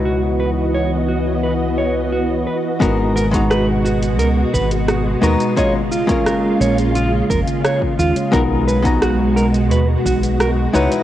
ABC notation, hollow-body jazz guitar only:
X:1
M:4/4
L:1/16
Q:1/4=87
K:G#m
V:1 name="Hollow-body jazz guitar"
[G,DEFB]16 | [G,B,DFA]3 [G,B,DFa]8- [G,B,DFa]3 [G,B,DFa]2 | [G,A,C^Ed] z2 [G,A,CEA]12- [G,A,CEA] | [G,B,DFA]3 [G,B,DFa]8- [G,B,DFa]3 [G,DEFB]2 |]